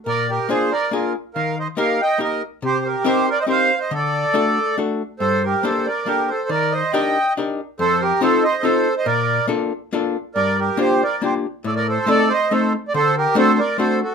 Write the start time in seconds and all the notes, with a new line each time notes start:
0.06 A#2 A#4 D5
0.30 G4 A#4
0.49 A#3 D4 F4 G#4 C5
0.72 A#4 D5
0.91 A#3 D4 F4 G#4 A#4
1.34 D#3 A#4 F5
1.59 C5 D#5
1.77 A#3 D#4 G4 A#4 F5
2.02 D#5 G5
2.18 A#3 D#4 G4 A#4
2.22 A#4 D#5
2.62 C3 G4 C5
2.85 G4 A#4
3.04 C4 D#4 G4 A#4 C5
3.30 A#4 D5
3.39 C5 D#5
3.47 C4 D#4 G4 A#4 C5
3.52 F5
3.78 C5 D#5
3.91 D3 A4
3.97 D5
4.34 A3 D4 F#4 A4
4.78 A3 D4 F#4 A4
5.20 G2 A4 C5
5.44 G4 A#4
5.63 A#3 D4 G4 A4 C5
5.86 A#4 D5
6.05 A#3 D4 G4 A4 A#4
6.28 A4 C5
6.49 D#3 A#4 D5
6.72 C5 D#5
6.93 D4 D#4 G4 A#4 D#5 G5
7.37 D4 D#4 G4 A#4
7.79 F2 A4 C5
8.01 G4 A#4
8.21 C4 D#4 F4 A4 C5
8.44 C5 D#5
8.62 C4 D#4 F4 A4 C5
8.97 C5 D#5
9.06 A#2 A#4 D5
9.47 A#3 D4 F4 A4
9.93 A#3 D4 F4 A4
10.35 G2 A#4 D5
10.59 G4 A#4
10.77 A#3 D4 F4 G4 C5
11.03 A#4 D5
11.22 A#3 D4 F4 G4 C5
11.64 A2 A4 D5
11.76 A#4 D5
11.88 A4 C5
12.06 A3 C4 D#4 A4 D5
12.30 C5 D#5
12.51 A3 C4 D#4 A4 C5
12.88 D5
12.94 D3 A4 C5
13.18 G4 A#4
13.35 A3 C4 D4 F#4 A4 C5
13.59 A#4 D5
13.78 A3 C4 D4 F#4 A4 C5
14.03 F#4 A4